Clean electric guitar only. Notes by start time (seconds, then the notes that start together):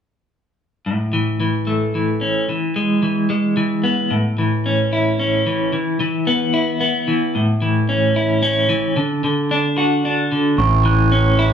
0.86 A2
1.13 E3
1.40 E3
1.67 A3
1.95 E3
2.21 C#4
2.49 E3
2.76 G#3
3.03 E3
3.30 G#3
3.57 E3
3.84 B3
4.11 A2
4.38 E3
4.66 C#4
4.93 E4
5.20 C#4
5.47 E3
5.73 E3
6.00 E3
6.27 B3
6.54 E4
6.81 B3
7.08 E3
7.35 A2
7.62 E3
7.89 C#4
8.16 E4
8.43 C#4
8.69 E3
8.96 D3
9.24 D3
9.51 D4
9.78 F#4
10.05 D4
10.32 D3
10.59 A2
10.85 E3
11.12 C#4
11.39 E4